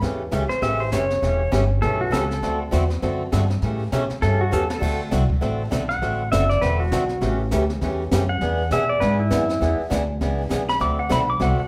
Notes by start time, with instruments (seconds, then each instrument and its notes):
0.01 upright bass E2, steel-string acoustic guitar C#3 E3 A3 C#4 G4, brush sweep, kick, snare
0.31 upright bass C#2, steel-string acoustic guitar C#3 E3 A3 C#4 G4, kick, snare, hi-hat pedal
0.49 pedal steel guitar C5, muted upright bass stroke, snare
0.62 upright bass A1, steel-string acoustic guitar C#3 E3 A3 C#4 G4, pedal steel guitar E5, brush sweep, kick, snare
0.80 pedal steel guitar C5
0.92 upright bass F#1, steel-string acoustic guitar C#3 E3 A3 C#4 G4, pedal steel guitar C#5, kick, snare, hi-hat pedal
1.10 snare
1.22 upright bass E1, steel-string acoustic guitar C#3 E3 A3 C#4 G4, brush sweep, kick, snare
1.52 upright bass G1, steel-string acoustic guitar C#3 E3 A3 C#4 G4, kick, snare, hi-hat pedal
1.82 upright bass B1, steel-string acoustic guitar C#3 E3 A3 C#4 G4, pedal steel guitar A4, brush sweep, kick, snare
2.01 pedal steel guitar F#4
2.11 upright bass C#2, steel-string acoustic guitar C#3 E3 A3 C#4 G4, pedal steel guitar A4, kick, snare, hi-hat pedal
2.29 pedal steel guitar A4, snare
2.42 upright bass D2, steel-string acoustic guitar D3 A3 C4 F#4 A4, brush sweep, kick, snare
2.71 upright bass E2, steel-string acoustic guitar D3 A3 C4 F#4 A4, kick, snare, hi-hat pedal
2.90 snare
3.02 upright bass F#2, steel-string acoustic guitar D3 A3 C4 F#4 A4, brush sweep, kick, snare
3.32 upright bass G2, steel-string acoustic guitar D3 A3 C4 F#4 A4, kick, snare, hi-hat pedal
3.50 snare
3.62 upright bass A2, steel-string acoustic guitar C#3 E3 A3 C#4 G4, brush sweep, kick, snare
3.92 upright bass B2, steel-string acoustic guitar C#3 E3 A3 C#4 G4, kick, snare, hi-hat pedal
4.10 muted upright bass stroke, snare
4.22 upright bass G2, steel-string acoustic guitar C#3 E3 A3 C#4 G4, pedal steel guitar A4, brush sweep, kick, snare
4.41 pedal steel guitar F#4
4.51 upright bass E2, steel-string acoustic guitar C#3 E3 A3 C#4 G4, pedal steel guitar A4, hi-hat pedal
4.70 pedal steel guitar A4, snare
4.80 upright bass D2, steel-string acoustic guitar D3 A3 C4 F#4 A4, brush sweep, kick, snare, crash
5.11 upright bass C2, steel-string acoustic guitar D3 A3 C4 F#4 A4, kick, snare, hi-hat pedal
5.30 kick
5.41 upright bass A1, steel-string acoustic guitar D3 A3 C4 F#4 A4, brush sweep, kick, snare
5.71 upright bass B1, steel-string acoustic guitar D3 A3 C4 F#4 A4, kick, snare, hi-hat pedal
5.89 pedal steel guitar F#5, snare
6.02 upright bass A1, steel-string acoustic guitar D3 A3 C4 F#4 A4, brush sweep, kick, snare
6.32 upright bass F#1, steel-string acoustic guitar D3 A3 C4 F#4 A4, pedal steel guitar E5, kick, snare, hi-hat pedal
6.49 pedal steel guitar D5, snare
6.61 upright bass E1, steel-string acoustic guitar D3 A3 C4 F#4 A4, pedal steel guitar B4, brush sweep, kick, snare
6.80 pedal steel guitar F#4
6.92 upright bass B1, steel-string acoustic guitar D3 A3 C4 F#4 A4, kick, snare, hi-hat pedal
7.09 snare
7.21 upright bass A1, steel-string acoustic guitar C#3 E3 A3 C#4 G4, brush sweep, kick, snare
7.51 upright bass D2, steel-string acoustic guitar C#3 E3 A3 C#4 G4, kick, snare, hi-hat pedal
7.70 snare
7.81 upright bass E2, steel-string acoustic guitar C#3 E3 A3 C#4 G4, brush sweep, kick, snare
8.11 upright bass F#2, steel-string acoustic guitar C#3 E3 A3 C#4 G4, kick, snare, hi-hat pedal
8.29 pedal steel guitar F#5
8.41 upright bass E2, steel-string acoustic guitar E3 B3 D4 G#4, brush sweep, kick, snare
8.71 upright bass B2, steel-string acoustic guitar E3 B3 D4 G#4, pedal steel guitar E5, kick, snare, hi-hat pedal
8.89 pedal steel guitar D5
9.00 upright bass G#2, steel-string acoustic guitar E3 B3 D4 G#4, pedal steel guitar B4, brush sweep, kick, snare
9.20 pedal steel guitar E4
9.30 upright bass F#2, steel-string acoustic guitar E3 B3 D4 G#4, kick, snare, hi-hat pedal
9.49 snare
9.61 upright bass E2, steel-string acoustic guitar E3 B3 D4 G#4, brush sweep, kick, snare
9.80 muted upright bass stroke
9.90 upright bass D2, steel-string acoustic guitar E3 B3 D4 G#4, kick, snare, hi-hat pedal
10.21 upright bass C#2, steel-string acoustic guitar E3 B3 D4 G#4, brush sweep, kick, snare
10.49 upright bass B1, steel-string acoustic guitar E3 B3 D4 G#4, kick, snare, hi-hat pedal
10.69 pedal steel guitar B5, snare
10.79 upright bass D2, steel-string acoustic guitar D3 A3 C4 F#4 A4, pedal steel guitar D6, brush sweep, kick, snare
10.99 pedal steel guitar F#5
11.09 upright bass B1, steel-string acoustic guitar D3 A3 C4 F#4 A4, pedal steel guitar B5, kick, snare, hi-hat pedal
11.30 pedal steel guitar D6
11.40 upright bass C2, steel-string acoustic guitar D3 A3 C4 F#4 A4, pedal steel guitar F#5, brush sweep, kick, snare
11.60 pedal steel guitar F#5